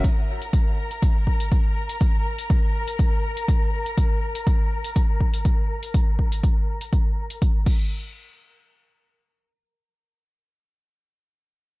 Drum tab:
CC |----------------|----------------|----------------|--------------x-|
HH |x--xx--xx--xx--x|x--xx--xx--xx--x|x--xx--xx--xx--x|x--xx--xx--xx---|
BD |o---o---o-o-o---|o---o---o---o---|o---o---o-o-o---|o-o-o---o---o-o-|

CC |----------------|----------------|
HH |----------------|----------------|
BD |----------------|----------------|